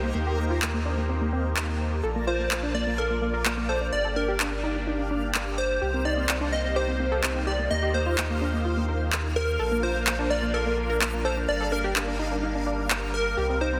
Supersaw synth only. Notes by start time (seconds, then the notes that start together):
Already playing: A#3 D#4 G4 C5
2.03 F4 D5 A5
3.92 D4 G4
5.81 A#3 D#4 C5
7.70 C5
9.59 A#3 D4 F4 A#4
11.49 G3 A#3
13.37 C4 D#4